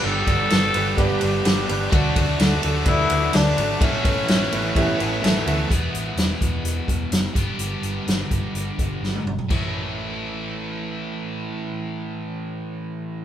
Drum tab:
CC |----------------|----------------|----------------|----------------|
RD |--x-x-x-x-x-x-x-|x-x-x-x-x-x-x-x-|x-x-x-x-x-x-x-x-|----------------|
HH |----------------|----------------|----------------|x-x-x-x-x-x-x-x-|
SD |----o-------o---|----o-------o---|----o-------o---|----o-------o---|
T1 |----------------|----------------|----------------|----------------|
T2 |----------------|----------------|----------------|----------------|
FT |----------------|----------------|----------------|----------------|
BD |--o-----o-------|o-o-----o-------|o-o-----o-------|o-----o---o---o-|

CC |----------------|x---------------|----------------|
RD |----------------|----------------|----------------|
HH |x-x-x-x-x-x-----|----------------|----------------|
SD |----o-------o---|----------------|----------------|
T1 |-------------o--|----------------|----------------|
T2 |--------------o-|----------------|----------------|
FT |---------------o|----------------|----------------|
BD |------o---o-----|o---------------|----------------|